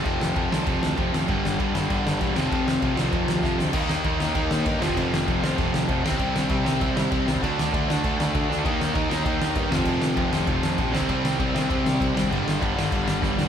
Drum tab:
CC |x---x---x---x---|x---x---x---x---|x---x---x-------|x---x---x---x---|
SD |--o---o---o---o-|--o---o---o---o-|--o---o---o-o-o-|--o---o---o---o-|
BD |o---o---o---o---|o---o---o---o---|o---o---o---o---|o---o---o---o--o|

CC |x---x---x---x---|x---x---x---x---|x---x---x---x---|x---x---x---x---|
SD |--o---o---o---o-|--o---o---o---o-|--o---o---o---o-|--o---o---o---o-|
BD |o---o---o---o--o|o---o---o---o--o|o---o---o---o---|o---o---o---o--o|

CC |x---x---x---x---|x---x---x---x---|x---x---x-------|
SD |--o---o---o---o-|--o---o---o---o-|--o---o---o-o-o-|
BD |o---o---o---o--o|o---o---o---o--o|o---o---o---o---|